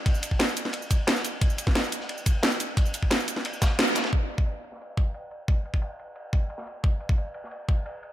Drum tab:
RD |x-x-x-x-x-x-x-x-|x-x-x-x-x-x-x-x-|x-x-x-x-x-x-x-xx|x-x-x-x-x-x-x-x-|
HH |x-x-x-x-x-x-x-x-|x-x-x-x-x-x-x-x-|x-x-x-x-x-x-x-x-|----------------|
SH |-xx--xx--xx--xx-|-xx--xx--xx--xx-|-xx--xx--xx--xx-|----------------|
SD |----o--o----oo--|---oo--o----o---|----o--o--o-oooo|-------o--------|
BD |o--o------o-----|o--o------o-----|o--o------o-----|o--o------o-----|

RD |x-x-x-x-x-x-x-x-|x-x-x-x-x-x-x-x-|
HH |----------------|----------------|
SH |----------------|----------------|
SD |-------------o--|-------o--------|
BD |o--o------o-----|o--o------o-----|